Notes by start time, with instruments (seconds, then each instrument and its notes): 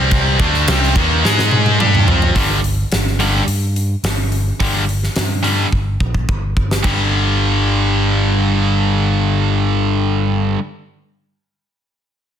Already playing: picked electric bass C2, distorted electric guitar C3 G3 C4
0.11 kick, crash
0.39 picked electric bass D2, distorted electric guitar D3 A3 D4, kick, crash
0.54 snare
0.67 picked electric bass C2, distorted electric guitar C3 G3 C4, snare, crash
0.83 snare
0.96 picked electric bass D#2, distorted electric guitar D#3 A#3 D#4, kick, crash
1.25 picked electric bass G#2, distorted electric guitar G#3 D#4 G#4, snare
1.39 snare
1.51 high tom
1.66 high tom
1.79 picked electric bass G2, distorted electric guitar G3 D4 G4, mid tom
1.95 mid tom
2.08 picked electric bass F2, distorted electric guitar F3 C4 F4, floor tom
2.22 floor tom
2.36 picked electric bass G1, distorted electric guitar G2 D3 G3, kick, open hi-hat
2.64 open hi-hat
2.92 picked electric bass G1, snare, open hi-hat
3.07 snare
3.19 distorted electric guitar G2 D3 G3, open hi-hat
3.47 picked electric bass G2, open hi-hat
3.76 open hi-hat
4.03 picked electric bass G1, snare, open hi-hat
4.32 open hi-hat
4.60 picked electric bass G1, distorted electric guitar G2 D3 G3, kick, open hi-hat
4.89 open hi-hat
5.03 snare
5.16 picked electric bass G2, snare, open hi-hat
5.43 distorted electric guitar G2 D3 G3, open hi-hat
5.72 picked electric bass G1, kick
6.00 picked electric bass A#1, kick
6.14 kick
6.29 picked electric bass G1, kick
6.57 picked electric bass G1, kick
6.71 snare
6.83 picked electric bass G1, distorted electric guitar G2 D3 G3, kick, crash